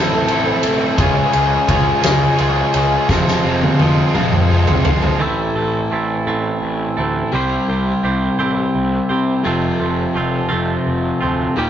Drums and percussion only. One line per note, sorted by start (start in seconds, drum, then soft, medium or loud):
0.28 ride medium
0.63 ride medium
0.98 kick loud
0.98 ride loud
1.33 ride medium
1.69 kick medium
1.69 ride medium
2.03 snare loud
2.03 ride loud
2.38 ride medium
2.74 ride medium
3.09 kick loud
3.09 snare medium
3.28 snare medium
3.62 high tom medium
3.79 high tom medium
4.14 mid tom loud
4.32 mid tom medium
4.67 floor tom loud
4.85 floor tom loud
5.02 floor tom medium